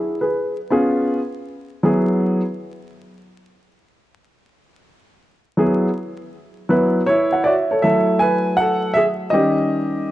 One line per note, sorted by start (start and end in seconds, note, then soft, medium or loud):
0.00 0.18 E4 medium
0.00 0.18 G#4 medium
0.21 0.56 G#4 soft
0.21 0.56 B4 medium
0.70 1.18 B3 medium
0.70 1.18 C#4 medium
0.70 1.18 F4 medium
0.70 1.18 G#4 medium
1.83 2.40 F#3 medium
1.83 2.40 B3 medium
1.83 2.41 E4 medium
1.83 2.41 G#4 medium
5.57 5.87 F#3 medium
5.57 5.87 B3 medium
5.57 5.88 E4 medium
5.57 5.88 G#4 medium
6.69 6.99 F#3 medium
6.69 7.00 B3 medium
6.69 7.00 E4 medium
6.69 7.00 B4 medium
7.06 7.43 E4 medium
7.06 7.42 C#5 medium
7.32 7.45 F#5 medium
7.44 7.55 F#4 medium
7.44 7.69 C#5 medium
7.44 7.52 D5 medium
7.44 7.69 E5 medium
7.71 7.83 A4 medium
7.71 8.06 C#5 medium
7.82 9.29 F#3 medium
7.82 9.29 A3 soft
7.82 9.30 E4 medium
7.82 8.19 A4 medium
7.82 8.21 E5 medium
8.19 8.56 B4 medium
8.19 8.55 G#5 medium
8.57 8.94 A4 medium
8.57 8.96 F#5 loud
8.94 9.05 G#4 medium
8.94 9.02 E5 loud
9.30 10.11 D#3 medium
9.30 10.11 G3 soft
9.30 10.11 C#4 medium
9.30 10.11 G4 medium
9.30 10.11 D#5 medium